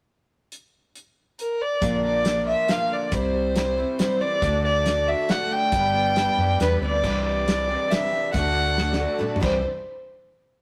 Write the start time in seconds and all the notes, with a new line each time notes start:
0.52 closed hi-hat
0.95 closed hi-hat
1.39 A#4, closed hi-hat
1.62 D5
1.81 A#1 A#2 D3 F3 A#3 D4 A#4, kick, closed hi-hat
2.03 A#3 D5
2.24 F3 A#3 D4 A#4, snare, closed hi-hat
2.46 F4 E5
2.68 F3 A#3 D4 A#4 F5, snare, closed hi-hat
2.90 D3 D5
3.11 C2 C3 G3 C4 E4 C5, kick, closed hi-hat
3.33 G3
3.54 G3 C4 E4 C5, snare, closed hi-hat
3.78 C4 E4 C5
3.99 G3 C4 E4 C5, snare, closed hi-hat
4.20 E3 C4 E4 C5 D5
4.42 D2 D3 A3 D4 F#4 A4, kick, closed hi-hat
4.63 A3 D5
4.85 A3 D4 F#4 A4, snare, closed hi-hat
5.07 F#4 E5
5.29 A3 D4 F#4 A4 F#5, snare, closed hi-hat
5.50 D3 G5
5.72 G1 G2 D3 G3 B3 D4 G4 B4, kick, closed hi-hat
5.94 B3
6.16 G3 B3 D4 B4, snare, closed hi-hat
6.38 F#2 G3 B3 D4 G4 B4
6.60 E2 G3 B3 D4 B4, snare, closed hi-hat
6.73 A3 B3
6.79 D2 C4 D4 B4
6.84 G3 B3 E4 F4 D5
6.91 G4 A4
6.95 B4 C5
7.01 C2 C3 E3 G3 C4 D4 E4 C5 D5, kick, crash
7.05 G4
7.27 D5
7.46 G3 C4 D4 G4, snare, closed hi-hat
7.68 C3 E3 G3 C4 D4 G4
7.90 G3 C4 D4 G4 E5, snare, closed hi-hat
8.13 G3 C4 D4 G4
8.32 D2 D3 A3 D4 F#4 A4 F#5, kick, closed hi-hat
8.76 A3 D4 F#4 A4, snare
8.93 snare
8.98 D3 A3 D4 F#4 A4
9.18 A3 D4 F#4 A4, mid tom
9.36 C3, mid tom
9.41 C2 E3 G3 C4 D4 E4 G4 C5, kick, crash